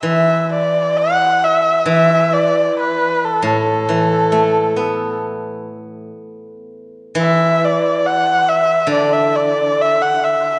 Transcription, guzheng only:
X:1
M:4/4
L:1/16
Q:1/4=68
K:none
V:1 name="Guzheng" clef=bass
E,8 E,6- E, A,,- | A,, E,2 A,2 B,8 z3 | E,8 D,8 |]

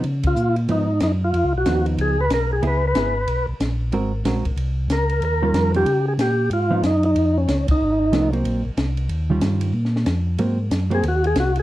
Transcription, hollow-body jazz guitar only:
X:1
M:4/4
L:1/8
Q:"Swing" 1/4=186
K:Db
V:1 name="Hollow-body jazz guitar"
z4 [F,_CE] z3 | z2 [F,_CE]3 z3 | [_C_FA] z [CFA] z4 z | [A,CGB] z [A,CGB] z4 z |
z [E,=G,DF]2 [E,G,DF] z4 | z [F,_CE] z6 | z2 [F,=A,_C] [G,B,=C]2 z3 | z [E,=G,DF]3 z4 |
[G,B,C] z2 [G,B,C] z4 |]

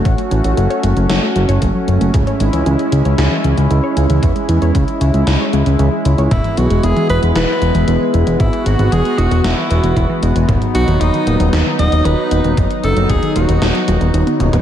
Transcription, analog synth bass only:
X:1
M:4/4
L:1/16
Q:1/4=115
K:C#m
V:1 name="Analog synth bass" clef=bass
A,,, z A,,, A,,, F,,, z F,,, F,,, F,,, z F,,, F,,, F,,, z F,,, F,,, | C,, z G,,, C,, C,, z C,, C,, C,, z C,, C,, C,, z C,, C,, | E,, z E,, E,, C,, z C,, C,, C,, z C,, C,, C,, z C,, C,, | E,,, z B,,, E,,, E,,, z E,,, E,,, E,,, z E,,, E,,, E,,, z E,,, E,,, |
G,,, z G,,, G,,, E,,, z E,,, E,,, E,,, z E,,, E,,, E,,, z E,,, E,,, | D,,, z B,,, D,,, D,,, z D,,, D,,, D,,, z D,,, D,,, D,,, z D,,, D,,, | F,,, z F,,, F,,, D,,, z D,,, D,,, D,,, z D,,, D,,, D,,, z D,,, D,,, |]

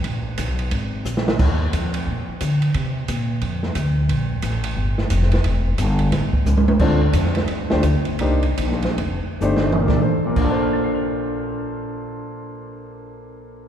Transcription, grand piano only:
X:1
M:4/4
L:1/8
Q:"Swing" 1/4=178
K:Bb
V:1 name="Grand piano"
z8 | z8 | z8 | z8 |
z8 | [CDFAc] z4 [A,DFGc] z2 | [B,DEGc] z4 z [A,DEGc] z | [B,,B,DAc] z [B,,B,DAcfac'f'a'c''f'']6- |
[B,,B,DAcfac'f'a'c''f'']8 |]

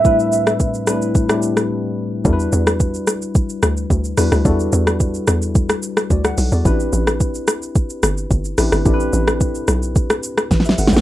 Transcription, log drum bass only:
X:1
M:4/4
L:1/16
Q:1/4=109
K:Em
V:1 name="Log drum bass" clef=bass
z16 | E,,2 E,,4 z4 D,,2 D,,2 E,, D,, | E,,2 E,,4 E,,4 z2 D,,2 B,,, E,, | A,,,2 A,,,4 z4 G,,,2 G,,,2 A,,, G,,, |
A,,,2 A,,,4 B,,,4 z2 A,,,2 G,,, A,,, |]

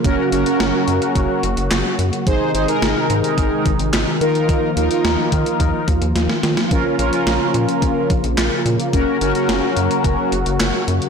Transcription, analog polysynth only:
X:1
M:4/4
L:1/16
Q:1/4=108
K:Gblyd
V:1 name="Analog polysynth"
[DGB]2 [DGB] [DGB]6- [DGB] z6 | [EAc]2 [EAc] [EAB]6- [EAB] z4 [EFB]2- | [EFB]2 [EFB] [EFB]6- [EFB] z6 | [DFB]2 [DFB] [DFB]6- [DFB] z6 |
[DGB]2 [DGB] [DGB]6- [DGB] z6 |]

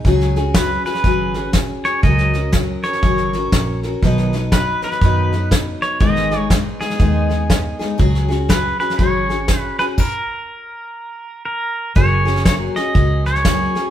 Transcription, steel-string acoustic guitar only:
X:1
M:4/4
L:1/8
Q:"Swing" 1/4=121
K:F#mix
V:1 name="Steel-string acoustic guitar"
[C,F,CFG] [CFG] [F,CFG] [CFG] [C,F,CFG] [CFG]2 [CFG] | [C,F,CFA] [CFA] [F,CFA] [CFA] [C,F,CFA] [CFA]2 [CFA] | [B,,D,F,B,DB] [F,B,DB] [F,B,DB] [F,B,DB] [B,,D,F,B,DB] [F,B,DB]3 | [G,,D,G,B,DG] [G,B,DG] [G,B,DG] [G,B,DG] [G,,D,G,B,DG] [G,B,DG]2 [G,B,DG] |
[C,F,CFG] [CFG] [F,CFG] [CFG] [C,F,CFG] [CFG]2 [CFG] | z8 | [F,A,CFG] [CFG] [F,A,CFG] [CFG] [A,CFG]2 [F,A,CFG] [CFG] |]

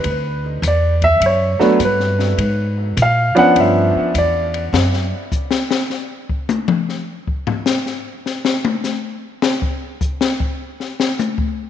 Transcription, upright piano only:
X:1
M:4/4
L:1/16
Q:"Swing" 1/4=102
K:Glyd
V:1 name="Upright piano"
B2 z2 d2 e2 c4 B4- | B2 z2 =f2 ^f2 e4 d3 z | z16 | z16 |
z16 |]
V:2 name="Upright piano"
z8 z2 [F,A,B,D]2 z4 | z6 [=F,B,CD]6 z4 | z16 | z16 |
z16 |]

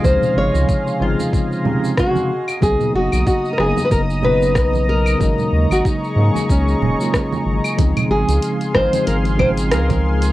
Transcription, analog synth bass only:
X:1
M:4/4
L:1/16
Q:"Swing 16ths" 1/4=93
K:Db
V:1 name="Analog synth bass" clef=bass
D,, z A,,, D,, z2 A,,, z8 z | _C,, z G,,, C,, z2 G,,, z G,,,4 C,,4 | A,,, z E,, A,,, z2 A,, z D,,2 E,,, z3 A,,, z | D,, z A,,, D,, z2 A,,, z A,,,4 D,,4 |]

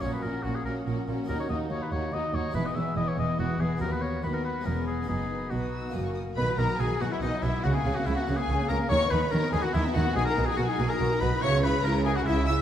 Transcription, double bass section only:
X:1
M:3/4
L:1/8
Q:1/4=143
K:F#
V:1 name="Double bass section" clef=bass
A,,, A,,, A,,, A,,, A,,, A,,, | [K:B] D,, D,, D,, D,, D,, D,, | E,,, E,,, E,,, E,,, E,,, E,,, | D,,2 D,,2 E,,,2 |
F,,,2 B,,,2 F,,,2 | B,,, B,,, B,,, B,,, B,,, B,,, | C,, C,, C,, C,, C,, C,, | D,, D,, D,, D,, D,, D,, |
B,,, B,,, B,,, B,,, B,,, B,,, | C,,2 C,,2 C,,2 |]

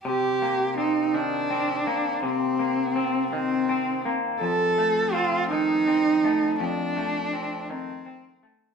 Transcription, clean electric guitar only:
X:1
M:6/8
L:1/8
Q:3/8=55
K:Cdor
V:1 name="Clean electric guitar"
C, B, C E, C B, | C, B, C E, C B, | F,, A, C E, C A, | F,, A, C E, C A, |]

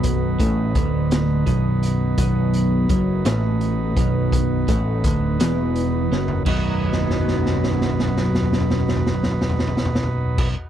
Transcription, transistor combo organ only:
X:1
M:6/8
L:1/8
Q:3/8=56
K:Bmix
V:1 name="Transistor combo organ"
[F,B,DB]6- | [F,B,DB]6- | [F,B,DB]6 | [F,B,DB]6- |
[F,B,DB]4- [F,B,DB] z |]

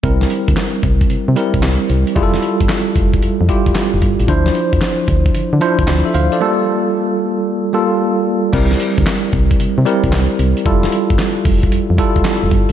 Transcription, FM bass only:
X:1
M:4/4
L:1/16
Q:"Swing 16ths" 1/4=113
K:Cmix
V:1 name="FM bass" clef=bass
C,,2 z D,, z2 C,,2 C, C, z C,, C,, z C,, z | F,,,2 z G,,, z2 F,,,2 F,, F,, z F,,, z F,,, G,,, A,,, | D,,2 z F,, z2 D,,2 D, D, z D,, D,, z D,, z | z16 |
C,,2 z D,, z2 C,,2 C, C, z C,, C,, z C,, z | F,,,2 z G,,, z2 F,,,2 F,, F,, z F,,, z F,,, G,,, z |]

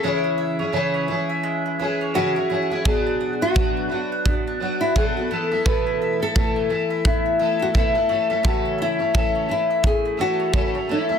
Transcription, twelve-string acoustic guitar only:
X:1
M:4/4
L:1/16
Q:"Swing 16ths" 1/4=86
K:A
V:1 name="Twelve-string acoustic guitar"
[C,E,CEG]3 [CEG] [C,E,CEG]2 [E,CEG]4 [E,CEG]2 [C,E,CEG] [CEG] [E,CEG] [CEG] | [B,,F,B,DF]3 [B,DF] [B,,F,B,DF]2 [F,B,DF]4 [F,B,DF]2 [B,,F,B,DF] [B,DF] [E,A,EA] [A,EA] | [B,,E,A,EA]3 [A,EA] [B,,E,A,EA]2 [E,A,EA]4 [E,A,EA]2 [B,,E,A,EA] [A,EA] [E,A,CA] [A,CA] | [C,E,A,CA]3 [A,CA] [C,E,A,CA]2 [E,A,C]4 [E,A,CA]2 [C,E,A,CA] [A,CA] [E,A,CA] [A,CA] |]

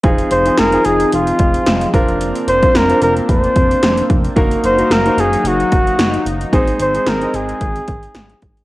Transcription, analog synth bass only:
X:1
M:4/4
L:1/8
Q:"Swing 16ths" 1/4=111
K:Fphr
V:1 name="Analog synth bass" clef=bass
F,,, F,,, F,,, F,,, F,,, F,,, F,,, F,,,- | F,,, F,,, F,,, F,,, F,,, F,,, F,,, F,,, | G,,, G,,, G,,, G,,, G,,, G,,, G,,, G,,, | A,,, A,,, A,,, A,,, A,,, A,,, A,,, A,,, |]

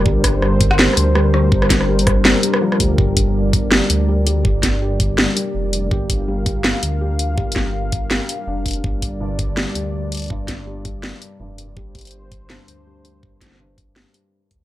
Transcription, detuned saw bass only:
X:1
M:4/4
L:1/8
Q:"Swing 16ths" 1/4=164
K:Gm
V:1 name="Detuned saw bass" clef=bass
G,,,4 z D,,3 | G,,,4 z3 D,, | G,,,4 z D,,3 | G,,,4 z2 F,,,2 |
G,,,4 z D,,3 | G,,,4 z2 F,,,2 | G,,,4 z D,,3 | G,,,4 z2 F,,,2 |
G,,,4 z D,,3 | G,,,4 z3 D,, |]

